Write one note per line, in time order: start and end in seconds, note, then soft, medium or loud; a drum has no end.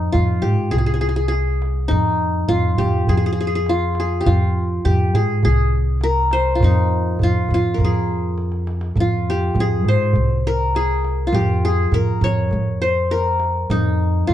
0.00 0.11 F2 medium
0.00 0.12 C4 medium
0.00 0.99 D#4 medium
0.12 0.44 F2 medium
0.12 1.47 F4 medium
0.12 darbuka dum medium
0.42 0.71 G#2 medium
0.42 0.77 G4 medium
0.42 darbuka dum medium
0.58 darbuka ka soft
0.71 1.86 C2 medium
0.71 0.78 G#4 medium
0.71 darbuka dum medium
0.78 0.86 G#4 medium
0.86 0.93 G#4 medium
0.86 darbuka ka soft
0.94 1.01 G#4 medium
1.01 1.08 G#4 medium
1.09 1.16 G#4 medium
1.16 1.28 G#4 medium
1.28 2.50 G#4 medium
1.28 darbuka tek medium
1.62 darbuka tek medium
1.76 darbuka ka soft
1.88 2.46 F2 medium
1.88 3.33 D#4 medium
1.88 darbuka dum medium
2.05 darbuka ka soft
2.19 darbuka ka soft
2.48 2.76 F2 medium
2.48 3.69 F4 medium
2.48 darbuka dum medium
2.78 3.06 F2 medium
2.78 3.15 G4 medium
2.78 darbuka dum medium
2.93 darbuka ka soft
3.07 4.23 F2 medium
3.07 3.17 G#4 medium
3.07 darbuka dum medium
3.17 3.26 G#4 medium
3.23 3.32 G#4 medium
3.23 darbuka ka soft
3.33 3.40 G#4 medium
3.33 darbuka ka soft
3.41 3.47 G#4 medium
3.47 3.55 G#4 medium
3.55 3.99 G#4 medium
3.66 4.26 F4 medium
3.66 darbuka tek medium
3.95 darbuka tek medium
4.00 4.27 G#4 medium
4.10 darbuka ka soft
4.21 4.85 G4 medium
4.26 4.82 F2 medium
4.26 5.61 F4 medium
4.26 darbuka dum medium
4.40 darbuka ka soft
4.56 darbuka ka soft
4.85 5.14 F2 medium
4.85 5.21 G4 medium
4.85 darbuka dum medium
5.14 5.42 G#2 medium
5.14 5.44 G#4 medium
5.14 darbuka dum medium
5.30 darbuka ka soft
5.43 6.59 C2 medium
5.43 6.66 G#4 medium
5.43 darbuka dum medium
5.72 darbuka ka soft
6.01 7.17 A#4 medium
6.01 darbuka tek medium
6.31 7.38 C5 medium
6.31 darbuka tek medium
6.46 darbuka ka soft
6.55 7.23 F4 medium
6.60 7.17 F2 loud
6.60 8.08 D#4 medium
6.60 darbuka dum medium
6.76 darbuka ka soft
7.06 darbuka ka soft
7.19 7.49 F2 medium
7.19 darbuka dum medium
7.23 7.54 F4 medium
7.49 7.78 F2 medium
7.49 darbuka dum medium
7.54 8.89 F4 medium
7.64 darbuka ka soft
7.74 8.88 A#4 medium
7.74 darbuka dum medium
7.80 8.94 F2 medium
7.85 9.06 G#4 medium
8.09 darbuka ka soft
8.24 darbuka ka soft
8.38 darbuka tek soft
8.52 darbuka ka medium
8.67 darbuka tek medium
8.81 darbuka ka medium
8.96 9.52 F2 medium
8.96 darbuka dum medium
9.00 10.35 F4 medium
9.10 darbuka ka soft
9.25 darbuka ka soft
9.30 9.66 G4 medium
9.55 9.84 F2 medium
9.55 darbuka dum medium
9.60 10.76 G#4 medium
9.84 10.12 G#2 medium
9.84 darbuka dum medium
9.88 10.94 C5 medium
10.00 darbuka ka soft
10.13 11.29 C2 medium
10.13 darbuka dum medium
10.29 darbuka ka soft
10.47 11.60 A#4 medium
10.75 11.40 G#4 medium
10.75 darbuka tek medium
11.04 darbuka tek medium
11.20 darbuka ka soft
11.27 12.62 F4 medium
11.33 11.88 F2 medium
11.33 11.71 G4 medium
11.33 darbuka dum loud
11.48 darbuka ka soft
11.63 12.86 G#4 medium
11.63 darbuka ka soft
11.92 12.19 F2 medium
11.92 13.07 A#4 medium
11.92 darbuka dum medium
12.21 12.49 F2 medium
12.21 12.88 C#5 medium
12.21 darbuka dum medium
12.37 darbuka ka soft
12.51 13.66 F2 medium
12.51 darbuka dum medium
12.67 darbuka ka soft
12.82 13.87 C5 medium
12.82 darbuka ka soft
13.11 14.24 A#4 medium
13.11 darbuka tek medium
13.40 darbuka tek medium
13.56 darbuka ka soft
13.70 14.24 F2 medium
13.70 14.34 D#4 medium
13.70 darbuka dum medium
13.85 darbuka ka soft
14.01 darbuka ka soft
14.27 14.34 F2 medium
14.27 14.34 F4 medium
14.27 darbuka dum medium